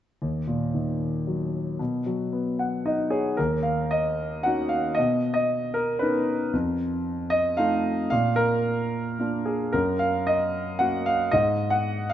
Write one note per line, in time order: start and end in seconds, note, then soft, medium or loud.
0.22 1.75 D#2 soft
0.47 1.50 A#2 soft
0.74 1.76 D#3 soft
1.27 1.78 F#3 soft
1.79 3.34 B2 soft
2.06 3.09 F#3 soft
2.33 3.36 B3 soft
2.59 2.84 F#5 soft
2.86 3.37 D#4 soft
2.86 3.10 D#5 soft
3.10 3.39 G#4 medium
3.10 3.36 C#5 soft
3.37 4.94 D#2 soft
3.37 3.66 A#4 soft
3.63 3.92 F5 medium
3.91 4.46 D#5 medium
4.43 4.96 C#4 soft
4.43 4.96 D#4 soft
4.43 4.97 F#4 soft
4.43 4.71 F#5 medium
4.69 4.97 F5 medium
4.95 5.32 D#5 medium
4.99 6.50 B2 soft
5.34 5.75 D#5 medium
5.74 6.01 A#4 medium
5.99 6.52 B3 soft
5.99 6.52 C#4 soft
5.99 6.52 D#4 soft
5.99 6.37 B4 medium
6.53 8.08 F2 soft
7.30 7.56 D#5 medium
7.57 8.10 A3 soft
7.57 8.10 D#4 soft
7.57 8.10 F4 soft
7.57 8.09 F5 medium
8.10 9.70 A#2 soft
8.10 8.38 F5 medium
8.36 9.49 A#4 medium
9.19 9.72 A#3 soft
9.19 9.73 D4 soft
9.19 9.73 F4 soft
9.46 9.74 G#4 soft
9.73 11.29 F#2 soft
9.73 9.98 A#4 medium
9.99 10.27 F5 medium
10.27 10.82 D#5 medium
10.79 11.31 A#3 soft
10.79 11.31 C#4 soft
10.79 11.32 F#4 soft
10.79 11.07 F#5 medium
11.06 11.33 F5 medium
11.31 12.13 G#2 soft
11.31 11.69 D#5 medium
11.70 12.07 F#5 medium
12.10 12.13 F5 medium